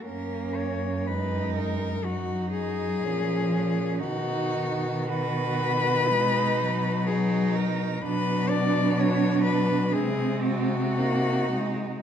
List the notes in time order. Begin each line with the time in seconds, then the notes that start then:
0.05 F#2 A#3 C#4 A#4
0.54 C#5
1.07 G#3 D#4 B4
1.55 A#4
2.04 F#3 D#4 F#4
2.50 G#4
3.03 A#2 F3 C#4
3.52 C#4
3.99 D#4 F#4
4.03 B2 D#3
5.07 F#4 B4
6.07 D#4
6.11 G#3
6.61 F#3
7.07 D#4 G#4
7.55 A#4
8.02 B2 D4 B4
8.06 F#3
8.49 D5
8.99 C#5
9.43 B4
9.92 C3 G#3 C4 G#4
10.44 F#4
10.97 A#3 D#4
11.52 G#3